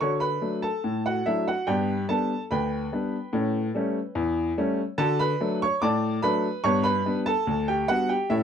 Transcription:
0.01 D3 F#4 C#5 C#6
0.20 B4 B5
0.41 F#3 A3 D4
0.62 A4 A5
0.84 A2
1.06 F#4 F#5
1.26 F#3 A3 D4 E4 E5
1.48 F#4 F#5
1.67 G2 B3 G4 D5 G5
2.09 G3 B3 D4 A4 A5
2.51 D2 B4 G5 B5
2.92 G3 B3 D4
3.33 A2 C#4
3.75 G3 A3 C#4
4.15 E2
4.58 G3 A3 C#4
4.98 D3 F#4 A4 A5
5.19 B4 B5
5.40 F#3 A3 D4
5.62 C#5 C#6
5.82 A2 D5 A5 D6
6.23 F#3 A3 D4 B4 B5
6.64 G2 B3 C#5 C#6
6.84 B4 B5
7.05 G3 B3 D4
7.26 A4 A5
7.47 D2
7.68 G4 G5
7.88 G3 B3 D4 F#4 F#5
8.09 G4 G5
8.30 A2 C#4 E4 C#5 E5

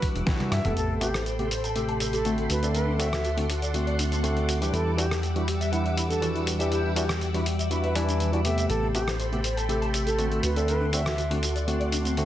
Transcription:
Already playing: E3 G3 D4 F#4 F#5 D6 E6
0.02 kick, open hi-hat
0.15 E1, closed hi-hat
0.26 E3 G3 D4 F#4, kick, snare, closed hi-hat, high tom
0.40 closed hi-hat, high tom, high conga
0.51 G2 E5, cross-stick, open hi-hat
0.64 E1 C3 A3 B3 A4, closed hi-hat, mid tom
0.76 A1 A4 G5 B5 C6, closed hi-hat, shaker
0.90 A4
1.00 C3 A3 B3 G4 A5, open hi-hat, shaker
1.14 C5, cross-stick, closed hi-hat, shaker
1.26 C5, closed hi-hat, shaker
1.39 C3 A3 B3 G4 A4, closed hi-hat
1.51 C5, open hi-hat, shaker
1.64 A5, closed hi-hat, shaker
1.75 C3 A3 G4 A4, closed hi-hat, shaker
1.89 A5, closed hi-hat
2.00 A4, open hi-hat, shaker
2.13 G4 A4, closed hi-hat, shaker
2.25 D3 A3 C4 F#4, closed hi-hat, shaker
2.38 A4, closed hi-hat
2.50 D2 F#4 B4 F#5 D6, open hi-hat, shaker
2.62 D3 A3 C4 A4 D5, closed hi-hat, shaker
2.74 D4 B4, closed hi-hat, shaker
2.87 D4
2.99 D3 A3 C4 F#4 D5 E5, open hi-hat, shaker
3.12 F#4, cross-stick, closed hi-hat, shaker
3.24 F#4, closed hi-hat, shaker
3.37 D3 A3 C4 D4 F#4, open hi-hat
3.49 F#4, open hi-hat, shaker
3.62 D5, closed hi-hat, shaker
3.74 D3 A3 C4 D4 F#4, closed hi-hat, shaker
3.87 D5, closed hi-hat
3.98 D4, open hi-hat, shaker
4.11 C4, closed hi-hat, shaker
4.23 D3 A3 C4 F#4, closed hi-hat, shaker
4.36 D4, closed hi-hat
4.48 F#4, open hi-hat, shaker
4.61 E3 G3 D4 G4 D5, closed hi-hat, shaker
4.73 E2 G3 E4 A4 F#5 E6, closed hi-hat, shaker
4.86 E4
4.97 E3 G3 D4 F#4 G4 E5, open hi-hat, shaker
5.10 G4, cross-stick, closed hi-hat, shaker
5.23 G4, closed hi-hat, shaker
5.35 E3 G3 D4 E4 F#4, closed hi-hat
5.47 G4, open hi-hat, shaker
5.61 E5, closed hi-hat, shaker
5.72 E3 G3 D4 E4 F#5, closed hi-hat, shaker
5.85 E5, closed hi-hat
5.97 E4, open hi-hat, shaker
6.09 D4 A4, closed hi-hat, shaker
6.21 E3 G3 D4 F#4, closed hi-hat, shaker
6.35 E4, closed hi-hat
6.46 A4, open hi-hat, shaker
6.59 E3 G3 D4 G4 E5, closed hi-hat, shaker
6.71 E4 G4, closed hi-hat, shaker
6.84 E4
6.96 E3 G3 D4 F#4 G4 E5, open hi-hat, shaker
7.09 G4, cross-stick, closed hi-hat, shaker
7.21 G4, closed hi-hat, shaker
7.34 E3 G3 D4 E4 F#4, open hi-hat
7.46 G4, open hi-hat, shaker
7.59 E5, closed hi-hat, shaker
7.70 E3 G3 D4 E4 F#4, closed hi-hat, shaker
7.83 B4 E5, closed hi-hat
7.95 E3 G3 D4 E4, open hi-hat, shaker
8.09 D4, closed hi-hat, shaker
8.20 E3, closed hi-hat, shaker
8.32 E3 G3 D4 E4 F#4, closed hi-hat
8.45 C3 A3 B3 G4 A4 E5, open hi-hat, shaker
8.58 E5, closed hi-hat, shaker
8.69 A1 A4 G5 B5 C6, closed hi-hat, shaker
8.83 A4
8.94 C3 A3 B3 G4 A5, open hi-hat, shaker
9.08 C5, cross-stick, closed hi-hat, shaker
9.19 C5, closed hi-hat, shaker
9.32 C3 A3 B3 G4 A4, closed hi-hat
9.44 C5, open hi-hat, shaker
9.57 A5, closed hi-hat, shaker
9.69 C3 A3 G4 A4, closed hi-hat, shaker
9.82 A5, closed hi-hat
9.93 A4, open hi-hat, shaker
10.06 G4 A4, closed hi-hat, shaker
10.18 D3 A3 C4 F#4, closed hi-hat, shaker
10.31 A4, closed hi-hat
10.43 D2 F#4 B4 F#5 D6, open hi-hat, shaker
10.56 D3 A3 C4 A4 D5, closed hi-hat, shaker
10.68 D4 B4, closed hi-hat, shaker
10.81 D4
10.92 D3 A3 C4 F#4 D5 E5, open hi-hat, shaker
11.06 F#4, cross-stick, closed hi-hat, shaker
11.18 F#4, closed hi-hat, shaker
11.30 D3 A3 C4 D4 F#4, open hi-hat
11.42 F#4, open hi-hat, shaker
11.55 D5, closed hi-hat, shaker
11.67 D3 A3 C4 D4 F#4, closed hi-hat, shaker
11.80 D5, closed hi-hat
11.92 D4, open hi-hat, shaker
12.05 C4, closed hi-hat, shaker
12.17 D3 A3 C4 F#4, closed hi-hat, shaker

